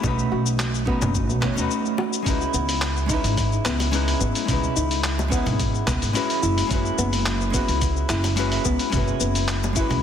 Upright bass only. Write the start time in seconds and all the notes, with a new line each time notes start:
0.04 B1
0.32 B1
1.02 F#1
1.30 B1
1.58 D#2
2.26 C#2
2.54 C#2
3.24 G#1
3.65 C#2
4.21 G#1
4.49 C#2
4.77 C#2
5.46 G#1
5.88 C#2
6.02 G#1
6.43 F#1
6.71 F#1
6.98 F#1
7.69 C#2
8.09 F#1
8.65 C#2
8.93 F#1
9.21 F#1
9.91 C#2